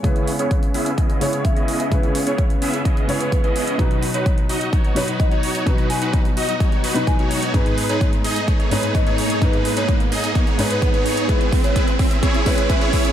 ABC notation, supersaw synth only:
X:1
M:4/4
L:1/16
Q:1/4=128
K:C#m
V:1 name="Supersaw synth"
[B,CEGc]2 z [B,CEGc] z2 [B,CEGe] z [B,CEGd]2 [B,CEGc]3 [B,CEGd]3 | [B,CEc]2 z [B,CEGc] z2 [B,CEGe] z [B,CEGd]2 [B,CEGc]3 [B,CEGd]3 | [FB]2 z [DFB] z2 [DFd] z [Dc]2 [DFB]3 [DFc]3 | [DFB]2 z [DFB] z2 [DFd] z [DFc]2 [DFB]3 [DFc]3 |
[DGB]2 z [DGB] z2 [DGd] z [Dc]2 [DGB]3 [DGc]3 | [DB]2 z [DGB] z2 [DGd] z [DGc]2 [DGB]3 [DGc]3 | [EB]2 z [EGB] z2 [EGe] z [EGc]2 [EGB]3 [EGc]3 |]